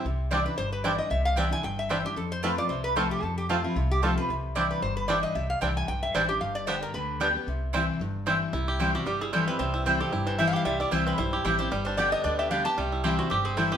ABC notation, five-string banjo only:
X:1
M:4/4
L:1/8
Q:"Swing" 1/4=226
K:C
V:1 name="Five-string banjo"
z2 [G,CD] z3 [G,CD] z | z2 [G,CD] z3 [G,CD] z | z2 [A,CF] z3 [A,CF] z | z2 [A,CF] z3 [A,CF] z |
z2 [G,CD] z3 [G,CD] z | z2 [G,CD] z3 [G,CD] z | z2 [G,B,D] z3 [G,B,D] z | z2 [G,CE] z3 [G,CE] z |
E G G, G G, E G, C | C E C G E E, E G | G, E G, C E G E G | G, D G, B, D G D G |
G, E G C G C E G |]